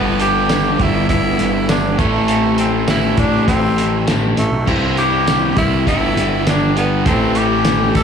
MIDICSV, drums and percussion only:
0, 0, Header, 1, 2, 480
1, 0, Start_track
1, 0, Tempo, 597015
1, 1839, Time_signature, 4, 2, 24, 8
1, 6459, End_track
2, 0, Start_track
2, 0, Title_t, "Drums"
2, 157, Note_on_c, 9, 42, 70
2, 238, Note_off_c, 9, 42, 0
2, 397, Note_on_c, 9, 42, 98
2, 397, Note_on_c, 9, 54, 110
2, 400, Note_on_c, 9, 38, 108
2, 478, Note_off_c, 9, 42, 0
2, 478, Note_off_c, 9, 54, 0
2, 481, Note_off_c, 9, 38, 0
2, 640, Note_on_c, 9, 36, 82
2, 640, Note_on_c, 9, 42, 63
2, 720, Note_off_c, 9, 42, 0
2, 721, Note_off_c, 9, 36, 0
2, 878, Note_on_c, 9, 42, 77
2, 879, Note_on_c, 9, 36, 77
2, 958, Note_off_c, 9, 42, 0
2, 960, Note_off_c, 9, 36, 0
2, 1118, Note_on_c, 9, 42, 67
2, 1199, Note_off_c, 9, 42, 0
2, 1357, Note_on_c, 9, 42, 95
2, 1357, Note_on_c, 9, 54, 116
2, 1361, Note_on_c, 9, 38, 117
2, 1438, Note_off_c, 9, 42, 0
2, 1438, Note_off_c, 9, 54, 0
2, 1441, Note_off_c, 9, 38, 0
2, 1598, Note_on_c, 9, 36, 98
2, 1598, Note_on_c, 9, 42, 69
2, 1678, Note_off_c, 9, 42, 0
2, 1679, Note_off_c, 9, 36, 0
2, 1834, Note_on_c, 9, 42, 83
2, 1915, Note_off_c, 9, 42, 0
2, 2074, Note_on_c, 9, 42, 67
2, 2154, Note_off_c, 9, 42, 0
2, 2313, Note_on_c, 9, 42, 97
2, 2313, Note_on_c, 9, 54, 111
2, 2316, Note_on_c, 9, 38, 115
2, 2393, Note_off_c, 9, 42, 0
2, 2393, Note_off_c, 9, 54, 0
2, 2396, Note_off_c, 9, 38, 0
2, 2552, Note_on_c, 9, 42, 67
2, 2556, Note_on_c, 9, 36, 83
2, 2633, Note_off_c, 9, 42, 0
2, 2636, Note_off_c, 9, 36, 0
2, 2796, Note_on_c, 9, 36, 75
2, 2797, Note_on_c, 9, 42, 82
2, 2877, Note_off_c, 9, 36, 0
2, 2877, Note_off_c, 9, 42, 0
2, 3040, Note_on_c, 9, 42, 72
2, 3120, Note_off_c, 9, 42, 0
2, 3276, Note_on_c, 9, 42, 100
2, 3276, Note_on_c, 9, 54, 99
2, 3280, Note_on_c, 9, 38, 108
2, 3357, Note_off_c, 9, 42, 0
2, 3357, Note_off_c, 9, 54, 0
2, 3360, Note_off_c, 9, 38, 0
2, 3516, Note_on_c, 9, 42, 73
2, 3596, Note_off_c, 9, 42, 0
2, 3759, Note_on_c, 9, 36, 93
2, 3760, Note_on_c, 9, 49, 92
2, 3839, Note_off_c, 9, 36, 0
2, 3840, Note_off_c, 9, 49, 0
2, 3999, Note_on_c, 9, 42, 71
2, 4079, Note_off_c, 9, 42, 0
2, 4241, Note_on_c, 9, 42, 102
2, 4241, Note_on_c, 9, 54, 112
2, 4244, Note_on_c, 9, 38, 108
2, 4322, Note_off_c, 9, 42, 0
2, 4322, Note_off_c, 9, 54, 0
2, 4325, Note_off_c, 9, 38, 0
2, 4475, Note_on_c, 9, 42, 62
2, 4477, Note_on_c, 9, 36, 79
2, 4555, Note_off_c, 9, 42, 0
2, 4558, Note_off_c, 9, 36, 0
2, 4719, Note_on_c, 9, 36, 80
2, 4722, Note_on_c, 9, 42, 89
2, 4799, Note_off_c, 9, 36, 0
2, 4802, Note_off_c, 9, 42, 0
2, 4964, Note_on_c, 9, 42, 70
2, 5044, Note_off_c, 9, 42, 0
2, 5200, Note_on_c, 9, 42, 90
2, 5200, Note_on_c, 9, 54, 112
2, 5203, Note_on_c, 9, 38, 101
2, 5280, Note_off_c, 9, 42, 0
2, 5280, Note_off_c, 9, 54, 0
2, 5283, Note_off_c, 9, 38, 0
2, 5441, Note_on_c, 9, 42, 71
2, 5521, Note_off_c, 9, 42, 0
2, 5675, Note_on_c, 9, 42, 84
2, 5676, Note_on_c, 9, 36, 106
2, 5755, Note_off_c, 9, 42, 0
2, 5757, Note_off_c, 9, 36, 0
2, 5910, Note_on_c, 9, 42, 68
2, 5990, Note_off_c, 9, 42, 0
2, 6148, Note_on_c, 9, 42, 101
2, 6148, Note_on_c, 9, 54, 113
2, 6151, Note_on_c, 9, 38, 120
2, 6228, Note_off_c, 9, 42, 0
2, 6228, Note_off_c, 9, 54, 0
2, 6231, Note_off_c, 9, 38, 0
2, 6392, Note_on_c, 9, 42, 67
2, 6395, Note_on_c, 9, 36, 78
2, 6459, Note_off_c, 9, 36, 0
2, 6459, Note_off_c, 9, 42, 0
2, 6459, End_track
0, 0, End_of_file